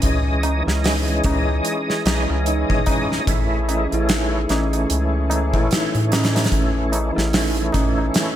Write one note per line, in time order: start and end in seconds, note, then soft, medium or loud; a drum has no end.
0.00 0.63 C#2 loud
0.00 0.61 E3 medium
0.00 0.62 G#3 medium
0.00 0.44 C#4 medium
0.00 0.84 D#4 loud
0.00 0.67 E4 medium
0.00 8.36 G#4 medium
0.00 kick loud
0.00 closed hi-hat medium
0.04 0.63 C#4 medium
0.04 0.63 D#5 medium
0.04 tabla na soft
0.43 0.65 C#4 medium
0.43 closed hi-hat medium
0.43 tabla na medium
0.63 3.21 E3 medium
0.63 3.23 G#3 medium
0.67 1.22 C#2 medium
0.67 3.24 C#4 medium
0.67 0.77 E4 medium
0.67 snare medium
0.67 tabla na soft
0.72 3.26 D#5 medium
0.84 1.23 D#4 medium
0.84 snare loud
0.84 open hi-hat medium
0.84 tabla na soft
1.08 closed hi-hat soft
1.24 1.61 C#2 loud
1.24 2.04 C#4 loud
1.24 kick loud
1.24 closed hi-hat medium
1.24 tabla na medium
1.48 tabla na soft
1.65 closed hi-hat medium
1.65 tabla na soft
1.90 snare soft
2.06 2.27 B1 medium
2.06 2.28 C#4 medium
2.06 snare loud
2.06 closed hi-hat medium
2.06 tabla na medium
2.29 2.65 C#2 medium
2.29 2.40 E4 medium
2.29 tabla na soft
2.46 2.86 D#4 loud
2.46 closed hi-hat medium
2.46 tabla na soft
2.70 2.85 G#1 medium
2.70 kick medium
2.86 3.28 C#4 medium
2.86 kick loud
2.86 closed hi-hat medium
2.86 tabla na medium
3.10 snare soft
3.10 tabla na medium
3.26 3.87 A1 medium
3.26 3.85 E3 medium
3.26 3.86 A3 medium
3.26 3.87 C#4 medium
3.26 kick loud
3.26 closed hi-hat medium
3.26 tabla na soft
3.31 3.88 E4 medium
3.68 3.90 C#4 medium
3.68 closed hi-hat medium
3.68 tabla na medium
3.88 6.46 E3 medium
3.88 6.47 A3 medium
3.92 4.46 A1 medium
3.92 6.49 C#4 medium
3.92 4.03 E4 medium
3.92 closed hi-hat soft
3.92 tabla na soft
4.09 4.48 D#4 medium
4.09 snare loud
4.09 closed hi-hat medium
4.09 tabla na soft
4.49 4.86 A1 medium
4.49 5.29 C#4 loud
4.49 snare soft
4.49 closed hi-hat medium
4.49 tabla na medium
4.73 closed hi-hat soft
4.73 tabla na soft
4.90 5.55 C#2 loud
4.90 closed hi-hat medium
4.90 tabla na soft
5.30 5.53 C#4 medium
5.30 closed hi-hat medium
5.30 tabla na medium
5.54 5.69 A1 medium
5.54 5.65 E4 medium
5.54 kick medium
5.54 tabla na medium
5.71 6.10 D#4 loud
5.71 snare loud
5.71 closed hi-hat medium
5.71 tabla na soft
5.95 6.49 A2 loud
5.95 closed hi-hat soft
6.12 6.92 C#4 loud
6.12 snare medium
6.12 closed hi-hat medium
6.12 tabla na medium
6.24 snare medium
6.24 closed hi-hat medium
6.35 snare medium
6.35 closed hi-hat medium
6.35 tabla na medium
6.44 snare medium
6.44 closed hi-hat medium
6.50 7.12 A1 loud
6.50 7.09 E3 medium
6.50 7.11 A3 medium
6.50 7.11 C#4 medium
6.50 kick loud
6.50 closed hi-hat medium
6.50 tabla na soft
6.92 7.14 C#4 medium
6.92 closed hi-hat medium
6.92 tabla na medium
7.12 8.36 E3 medium
7.12 8.36 A3 medium
7.16 7.71 A1 medium
7.16 8.36 C#4 medium
7.16 7.26 E4 medium
7.16 snare medium
7.16 tabla na soft
7.32 7.72 D#4 medium
7.32 snare loud
7.32 open hi-hat medium
7.32 tabla na soft
7.57 closed hi-hat soft
7.72 8.11 A1 loud
7.72 8.36 C#4 medium
7.72 kick loud
7.72 closed hi-hat medium
7.72 tabla na medium
7.98 tabla na medium
7.98 tabla ge medium
8.14 snare loud
8.14 closed hi-hat medium
8.14 tabla na soft